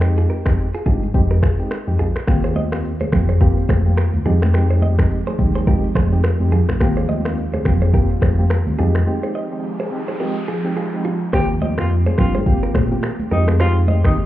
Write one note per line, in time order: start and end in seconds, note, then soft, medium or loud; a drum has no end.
0.00 0.25 F2 medium
0.00 0.42 G#3 medium
0.00 0.42 C4 medium
0.00 0.42 D#4 medium
0.00 0.42 G4 loud
0.00 finger snap medium
0.00 cross-stick medium
0.00 shaker medium
0.17 0.26 F4 medium
0.17 0.25 G#4 medium
0.17 shaker medium
0.29 0.41 G4 medium
0.29 0.40 A#4 medium
0.29 shaker soft
0.46 0.54 F2 medium
0.46 0.66 G#3 medium
0.46 0.66 C4 medium
0.46 0.66 D#4 medium
0.46 0.66 G4 medium
0.46 finger snap medium
0.46 kick medium
0.46 cross-stick loud
0.46 shaker medium
0.58 shaker medium
0.74 0.83 F4 medium
0.74 0.82 G#4 medium
0.74 shaker soft
0.86 1.06 G2 medium
0.86 1.08 G#3 medium
0.86 1.08 C4 medium
0.86 1.09 D#4 medium
0.86 0.97 F4 medium
0.86 1.09 G4 medium
0.86 0.97 G#4 medium
0.86 kick loud
0.86 shaker medium
1.03 shaker medium
1.14 1.46 F2 loud
1.14 1.37 G#3 medium
1.14 1.37 C4 medium
1.14 1.37 D#4 medium
1.14 1.37 G4 loud
1.14 kick loud
1.14 shaker medium
1.31 1.39 G4 medium
1.31 1.38 A#4 medium
1.31 shaker soft
1.42 1.54 F4 medium
1.42 1.53 G#4 medium
1.42 finger snap medium
1.42 kick medium
1.42 cross-stick medium
1.42 shaker medium
1.59 1.79 G#3 medium
1.59 1.79 C4 medium
1.59 1.79 D#4 medium
1.59 1.79 G4 medium
1.59 shaker medium
1.71 finger snap medium
1.71 cross-stick loud
1.71 shaker medium
1.87 1.96 F2 medium
1.87 2.07 G#3 medium
1.87 2.07 C4 medium
1.87 2.08 D#4 medium
1.87 2.08 G4 medium
1.87 shaker soft
1.99 2.11 A#1 medium
1.99 2.10 F4 medium
1.99 2.10 G#4 medium
1.99 shaker medium
2.15 finger snap medium
2.15 cross-stick medium
2.15 shaker soft
2.27 3.09 D#2 loud
2.27 4.24 D#3 medium
2.27 2.68 A#3 medium
2.27 4.24 A#3 medium
2.27 2.68 C4 medium
2.27 11.29 C4 medium
2.27 2.69 F4 medium
2.27 4.24 F4 medium
2.27 8.75 G4 medium
2.27 2.69 G4 loud
2.27 finger snap medium
2.27 kick loud
2.27 cross-stick medium
2.27 shaker medium
2.44 2.52 G#4 medium
2.44 2.52 C5 medium
2.44 shaker medium
2.56 2.67 C5 medium
2.56 2.66 D#5 medium
2.56 high conga medium
2.72 2.92 A#3 medium
2.72 2.92 C4 medium
2.72 2.93 F4 medium
2.72 2.93 G4 medium
2.72 finger snap medium
2.72 cross-stick loud
2.72 shaker medium
2.85 shaker medium
3.00 3.09 G#4 medium
3.00 3.08 C5 medium
3.00 high conga medium
3.00 shaker soft
3.12 3.53 F2 loud
3.12 3.35 A#3 medium
3.12 3.35 C4 medium
3.12 3.35 F4 medium
3.12 3.35 G4 medium
3.12 finger snap medium
3.12 kick medium
3.12 cross-stick medium
3.12 low conga medium
3.12 shaker medium
3.29 3.37 G#4 medium
3.29 3.36 C5 medium
3.29 shaker medium
3.41 3.82 A#3 medium
3.41 3.82 C4 medium
3.41 3.82 F4 medium
3.41 3.82 G4 loud
3.41 3.52 G4 medium
3.41 3.51 A#4 medium
3.41 kick loud
3.41 shaker medium
3.57 shaker medium
3.69 4.01 F2 medium
3.69 3.80 G#4 medium
3.69 3.80 C5 medium
3.69 finger snap medium
3.69 kick medium
3.69 cross-stick medium
3.69 high conga medium
3.69 shaker medium
3.85 4.06 A#3 medium
3.85 4.06 C4 medium
3.85 4.06 F4 medium
3.85 4.06 G4 medium
3.85 high conga medium
3.85 shaker medium
3.97 4.08 G4 medium
3.97 4.08 A#4 medium
3.97 finger snap medium
3.97 cross-stick loud
3.97 shaker medium
4.14 4.22 D#2 medium
4.14 high conga medium
4.14 shaker soft
4.26 5.06 F2 medium
4.26 6.78 F3 medium
4.26 4.52 G#3 medium
4.26 6.78 G#3 medium
4.26 4.52 C4 medium
4.26 6.78 D#4 medium
4.26 4.52 D#4 medium
4.26 4.37 F4 medium
4.26 4.52 G4 loud
4.26 4.36 G#4 medium
4.26 low conga medium
4.26 shaker soft
4.42 finger snap medium
4.42 cross-stick medium
4.42 high conga medium
4.42 shaker soft
4.54 4.95 G#3 medium
4.54 4.95 C4 medium
4.54 4.95 D#4 medium
4.54 4.95 G4 loud
4.54 finger snap medium
4.54 cross-stick medium
4.54 shaker medium
4.70 4.79 G#4 medium
4.70 4.78 C5 medium
4.70 shaker medium
4.82 4.93 C5 medium
4.82 4.93 D#5 medium
4.82 high conga medium
4.99 5.19 G#3 medium
4.99 5.19 C4 medium
4.99 5.19 D#4 medium
4.99 5.19 G4 medium
4.99 finger snap medium
4.99 kick medium
4.99 cross-stick loud
4.99 shaker medium
5.11 shaker medium
5.27 5.35 G#4 medium
5.27 5.35 C5 medium
5.27 high conga medium
5.27 shaker soft
5.39 5.79 D#2 medium
5.39 5.61 G#3 medium
5.39 5.61 C4 medium
5.39 5.62 D#4 medium
5.39 5.62 G4 medium
5.39 kick loud
5.39 low conga medium
5.39 shaker medium
5.55 5.63 G#4 medium
5.55 5.63 C5 medium
5.55 shaker medium
5.67 5.90 G#3 loud
5.67 5.90 C4 medium
5.67 5.90 D#4 medium
5.67 5.78 F4 medium
5.67 5.90 G4 loud
5.67 5.78 A#4 medium
5.67 kick loud
5.67 shaker medium
5.84 shaker soft
5.95 6.27 F2 medium
5.95 6.06 G#4 medium
5.95 6.06 C5 medium
5.95 finger snap medium
5.95 kick medium
5.95 cross-stick medium
5.95 high conga medium
5.95 shaker medium
6.12 6.32 G#3 medium
6.12 6.32 C4 medium
6.12 6.32 D#4 medium
6.12 6.32 G4 medium
6.12 high conga medium
6.12 shaker medium
6.24 6.35 F4 medium
6.24 6.34 A#4 medium
6.24 finger snap medium
6.24 cross-stick loud
6.24 shaker medium
6.40 6.60 F2 medium
6.40 6.60 G#3 medium
6.40 6.61 C4 medium
6.40 6.61 D#4 medium
6.40 6.61 G4 medium
6.40 high conga medium
6.40 shaker soft
6.52 6.63 F4 medium
6.52 6.63 G#4 medium
6.52 low conga medium
6.52 shaker soft
6.68 6.77 A#1 medium
6.68 finger snap medium
6.68 cross-stick medium
6.68 high conga medium
6.68 shaker soft
6.80 7.61 D#2 loud
6.80 8.77 D#3 medium
6.80 8.77 A#3 medium
6.80 7.21 A#3 medium
6.80 7.21 C4 medium
6.80 8.77 F4 medium
6.80 7.22 F4 medium
6.80 7.22 G4 loud
6.80 finger snap medium
6.80 kick loud
6.80 cross-stick loud
6.80 shaker medium
6.97 7.05 G#4 medium
6.97 7.04 C5 medium
6.97 shaker medium
7.09 7.20 C5 medium
7.09 7.19 D#5 medium
7.09 high conga medium
7.25 7.45 A#3 medium
7.25 7.45 C4 medium
7.25 7.46 F4 medium
7.25 7.46 G4 medium
7.25 finger snap medium
7.25 cross-stick loud
7.25 shaker medium
7.38 shaker medium
7.53 7.62 G#4 medium
7.53 7.61 C5 medium
7.53 high conga medium
7.53 shaker soft
7.65 8.05 F2 loud
7.65 7.88 A#3 medium
7.65 7.88 C4 medium
7.65 7.88 F4 medium
7.65 7.88 G4 medium
7.65 finger snap medium
7.65 kick loud
7.65 cross-stick medium
7.65 low conga medium
7.65 shaker medium
7.82 7.90 G#4 medium
7.82 7.89 C5 medium
7.82 shaker medium
7.93 8.34 A#3 medium
7.93 8.34 C4 medium
7.93 8.35 F4 medium
7.93 8.35 G4 loud
7.93 8.05 G4 medium
7.93 8.04 A#4 medium
7.93 kick loud
7.93 shaker medium
8.10 shaker soft
8.22 8.53 F2 medium
8.22 8.33 G#4 medium
8.22 8.33 C5 medium
8.22 finger snap medium
8.22 kick medium
8.22 cross-stick medium
8.22 high conga medium
8.22 shaker medium
8.38 8.58 A#3 medium
8.38 8.59 C4 medium
8.38 8.59 F4 medium
8.38 8.59 G4 medium
8.38 high conga medium
8.38 shaker medium
8.50 8.61 G4 medium
8.50 8.61 A#4 medium
8.50 finger snap medium
8.50 cross-stick loud
8.50 shaker medium
8.67 8.75 D#2 medium
8.67 high conga medium
8.67 shaker soft
8.78 8.99 F2 loud
8.78 11.31 F3 medium
8.78 9.05 G#3 medium
8.78 11.31 G#3 medium
8.78 9.05 C4 medium
8.78 11.31 D#4 medium
8.78 9.05 D#4 medium
8.78 8.90 F4 medium
8.78 11.31 G4 medium
8.78 9.05 G4 loud
8.78 8.89 G#4 medium
8.78 low conga medium
8.78 shaker medium
8.95 finger snap medium
8.95 cross-stick medium
8.95 high conga medium
8.95 shaker soft
9.07 9.48 G#3 loud
9.07 9.48 C4 medium
9.07 9.48 D#4 medium
9.07 9.48 G4 loud
9.07 noise sweep medium
9.23 9.31 G#4 medium
9.23 9.31 C5 medium
9.35 9.46 C5 medium
9.35 9.46 D#5 medium
9.51 9.72 G#3 medium
9.51 9.72 C4 medium
9.51 9.72 D#4 medium
9.51 9.72 G4 medium
9.80 9.88 G#4 medium
9.80 9.87 C5 medium
9.91 10.14 G#3 medium
9.91 10.14 C4 medium
9.91 10.14 D#4 medium
9.91 10.14 G4 medium
10.08 10.16 G#4 medium
10.08 10.16 C5 medium
10.20 10.42 G#3 medium
10.20 10.42 C4 medium
10.20 10.43 D#4 medium
10.20 10.31 F4 medium
10.20 10.43 G4 loud
10.20 10.31 A#4 medium
10.48 10.59 F4 medium
10.48 10.59 G#4 medium
10.64 10.85 G#3 medium
10.64 10.85 C4 medium
10.64 10.85 D#4 medium
10.64 10.85 G4 medium
10.77 10.88 F4 medium
10.77 10.87 G#4 medium
10.93 11.13 G#3 medium
10.93 11.13 C4 medium
10.93 11.13 D#4 medium
10.93 11.13 G4 medium
11.05 11.16 D4 medium
11.05 11.15 F4 medium
11.33 11.78 D#2 loud
11.33 13.29 D#3 medium
11.33 11.74 A#3 medium
11.33 13.29 A#3 medium
11.33 13.29 C4 medium
11.33 11.74 C4 medium
11.33 13.29 F4 medium
11.33 11.74 F4 medium
11.33 14.26 G4 medium
11.33 11.74 G4 loud
11.33 11.44 G4 medium
11.33 11.48 G4 loud
11.33 11.44 C5 loud
11.33 finger snap medium
11.33 kick loud
11.33 cross-stick loud
11.33 shaker medium
11.49 shaker medium
11.61 11.73 C5 medium
11.61 11.72 D#5 medium
11.61 high conga medium
11.78 12.07 F2 medium
11.78 11.98 A#3 medium
11.78 11.98 C4 medium
11.78 11.98 F4 medium
11.78 11.89 F4 medium
11.78 11.98 G4 medium
11.78 finger snap medium
11.78 cross-stick loud
11.78 shaker medium
11.90 shaker medium
12.06 12.15 G#4 medium
12.06 12.14 C5 medium
12.06 high conga medium
12.06 shaker soft
12.18 12.50 G2 loud
12.18 12.40 A#3 medium
12.18 12.41 C4 medium
12.18 12.41 F4 medium
12.18 12.33 F4 medium
12.18 12.41 G4 medium
12.18 finger snap medium
12.18 kick loud
12.18 cross-stick medium
12.18 low conga medium
12.18 shaker medium
12.35 12.43 G#4 medium
12.35 12.42 C5 medium
12.35 high conga medium
12.35 shaker medium
12.46 12.87 A#3 loud
12.46 12.87 C4 medium
12.46 12.87 F4 medium
12.46 12.87 G4 loud
12.46 kick loud
12.46 shaker medium
12.63 12.71 G4 medium
12.63 12.71 A#4 medium
12.63 shaker medium
12.74 12.95 A#2 medium
12.74 12.86 G#4 medium
12.74 12.85 C5 medium
12.74 finger snap medium
12.74 kick medium
12.74 cross-stick loud
12.74 open hi-hat medium
12.74 high conga medium
12.74 shaker medium
12.91 13.11 A#3 medium
12.91 13.11 C4 medium
12.91 13.11 F4 medium
12.91 13.12 G4 medium
12.91 high conga medium
12.91 shaker medium
13.03 13.14 G4 medium
13.03 13.14 A#4 medium
13.03 finger snap medium
13.03 cross-stick loud
13.03 shaker medium
13.20 high conga medium
13.20 shaker soft
13.31 14.04 F2 medium
13.31 14.26 F3 medium
13.31 13.58 G#3 medium
13.31 14.26 G#3 medium
13.31 13.58 C4 medium
13.31 14.26 C4 medium
13.31 13.58 D#4 medium
13.31 14.26 D#4 medium
13.31 13.46 D#4 medium
13.31 13.42 F4 medium
13.31 13.58 G4 loud
13.31 13.42 A#4 medium
13.31 low conga medium
13.31 shaker medium
13.48 13.56 F4 medium
13.48 13.55 G#4 medium
13.48 finger snap medium
13.48 cross-stick loud
13.48 high conga medium
13.48 shaker soft
13.59 14.00 G#3 medium
13.59 14.00 C4 medium
13.59 14.01 D#4 medium
13.59 13.74 F4 loud
13.59 14.01 G4 loud
13.59 13.71 G#4 medium
13.59 13.70 C5 loud
13.59 finger snap medium
13.59 cross-stick medium
13.59 shaker medium
13.76 shaker medium
13.88 13.99 C5 medium
13.88 13.99 D#5 medium
13.88 high conga medium
14.04 14.26 D#2 loud
14.04 14.24 G#3 medium
14.04 14.24 C4 medium
14.04 14.25 D#4 medium
14.04 14.15 D#4 medium
14.04 14.25 G4 medium
14.04 finger snap medium
14.04 kick medium
14.04 cross-stick loud
14.04 shaker medium
14.17 shaker medium